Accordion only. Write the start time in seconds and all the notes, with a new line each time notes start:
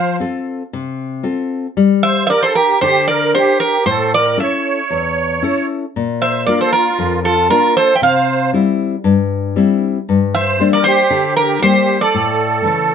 Already playing: C5
2.04 C5
2.26 A#4 C5
2.43 A4
2.55 G4
2.82 G4
3.09 A#4
3.37 G4
3.63 G4
3.90 A4
4.15 A#4
4.42 C#5
6.21 C5
6.48 A#4
6.60 A4
6.70 F4
7.23 F4
7.49 F4
7.76 A4
7.95 E5
8.04 C5
10.35 C5
10.73 A#4
10.87 G4
11.38 G4
11.62 G4
12.01 A4